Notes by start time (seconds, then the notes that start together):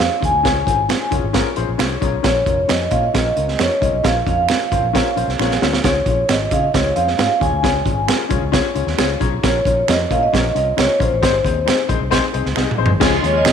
Already playing: F5
0.00 C#4 F4 G#4 C5, finger snap, snare, closed hi-hat
0.20 D#2 C#4 F4 G#4 C#5, kick, closed hi-hat
0.25 G#5
0.34 D2
0.43 C#2 C#4 F4 G#4 C#5, kick, snare, closed hi-hat
0.66 G#1 C#4 F4 G#4 C5, kick, closed hi-hat
0.88 C#4 F4 G#4 C#5, finger snap, snare, closed hi-hat
1.11 F1 C#4 F4 G#4 C#5, kick, closed hi-hat
1.24 G#1
1.33 C#4 F4 G#4 A#4, kick, snare, closed hi-hat
1.56 A#1 C#4 F4 G#4 C5, closed hi-hat
1.69 A#1
1.78 C2 C#4 F4 G#4 C#5, finger snap, snare, closed hi-hat
2.01 B1 C#4 F4 G#4 C#5 A#5, kick, closed hi-hat
2.23 A#1 C#4 F4 A#4 C#5, kick, snare, closed hi-hat
2.46 F1 C#4 F4 A#4 C#5, kick, closed hi-hat
2.68 F2 C#4 F4 A#4 C#5, finger snap, snare, closed hi-hat
2.91 A#2 C#4 F4 A#4 C#5 F5, kick, closed hi-hat
3.03 D#5
3.14 A#1 C#4 F4 A#4 C#5, kick, snare, closed hi-hat
3.36 C#2 C#4 F4 A#4 C#5, closed hi-hat
3.48 snare
3.59 F2 C#4 F4 A#4 C#5, finger snap, snare, closed hi-hat
3.81 C2 C#4 F4 A#4 C#5 D#5, kick, closed hi-hat
3.93 B1
4.03 A#1 C#4 F4 A#4 C#5 F5, kick, snare, closed hi-hat
4.26 F2 C#4 F4 A#4 C#5 F5, kick, closed hi-hat
4.49 C#4 F4 A#4 C#5, finger snap, snare, closed hi-hat
4.71 G#1 C#4 F4 A#4 C5, kick, closed hi-hat
4.83 A#1
4.93 C#4 F4 A#4 C#5, kick, snare, closed hi-hat
5.16 A#1 C#4 F4 A#4 C5, closed hi-hat
5.28 C2, snare
5.39 A#1 C#4 F4 A#4 C#5, finger snap, snare
5.51 snare
5.62 D2 C#4 F4 A#4 C#5, snare
5.73 snare
5.84 C#2 C#4 F4 G#4 C#5, kick, snare, closed hi-hat
6.06 A#1 C#4 F4 G#4 C#5, kick, closed hi-hat
6.29 G#1 C#4 F4 G#4 C#5, finger snap, snare, closed hi-hat
6.51 C#3 C#4 F4 G#4 C#5 F5, kick, closed hi-hat
6.63 D#5
6.74 C#2 C#4 F4 G#4 C#5, kick, snare, closed hi-hat
6.96 F2 C#4 F4 G#4 C5 F5, closed hi-hat
7.07 snare
7.18 G#2 C#4 F4 G#4 C#5, finger snap, snare, closed hi-hat
7.40 D#2 C#4 F4 G#4 C#5 G#5, kick, closed hi-hat
7.53 D2
7.63 C#2 C#4 F4 G#4 C#5, kick, snare, closed hi-hat
7.85 G#1 C#4 F4 G#4 C#5, kick, closed hi-hat
8.07 C#4 F4 G#4 A#4, finger snap, snare, closed hi-hat
8.29 C2 C#4 F4 G#4 C#5, kick, closed hi-hat
8.42 C#2
8.52 C#4 F4 G#4 C#5, kick, snare, closed hi-hat
8.75 C#2 C#4 F4 G#4 C#5, closed hi-hat
8.87 D#2, snare
8.98 C#2 C#4 F4 G#4 C#5 F5, finger snap, snare, closed hi-hat
9.20 B1 C#4 F4 G#4 C#5 A#5, kick, closed hi-hat
9.43 A#1 C#4 F4 A#4 C#5, kick, snare, closed hi-hat
9.65 A#1 C#4 F4 A#4 C#5, kick, closed hi-hat
9.88 F2 C#4 F4 A#4 C#5 D#5, finger snap, snare, closed hi-hat
10.10 A#2 C#4 F4 A#4 C#5 F5, kick, closed hi-hat
10.23 D#5
10.33 A#1 C#4 F4 A#4 C#5, kick, snare, closed hi-hat
10.55 C2 C#4 F4 A#4 D#5, closed hi-hat
10.77 C#2 C#4 F4 A#4 C#5, finger snap, snare, closed hi-hat
10.99 A#1 C#4 F4 A#4 C5 C#5, kick, closed hi-hat
11.12 A1
11.22 G#1 C4 D#4 G#4 C5, kick, snare, closed hi-hat
11.44 D#2 C4 D#4 G#4 C5, kick, closed hi-hat
11.65 C4 D#4 G#4 C5, finger snap, snare, closed hi-hat
11.88 A#1 C4 D#4 G#4 C5, kick, closed hi-hat
12.01 C2
12.10 C4 D#4 G#4 C5, kick, snare, closed hi-hat
12.33 C2 C4 D#4 G#4 C5, closed hi-hat
12.46 C#2, snare
12.55 C2 C4 D#4 G#4 D#5, finger snap, snare
12.71 mid tom
12.77 A#1 C4 D#4 G#4 C5
12.86 floor tom
12.90 G#1
13.00 C#2 F3 G#3 C#4 F4 G#4 C#5, kick, snare, crash
13.22 D#2 G#3 C#4 F4 G#4 C#5, closed hi-hat
13.37 D#5
13.44 C#2 G#3 C#4 F4 G#4 D#5, finger snap, snare, closed hi-hat
13.49 C#5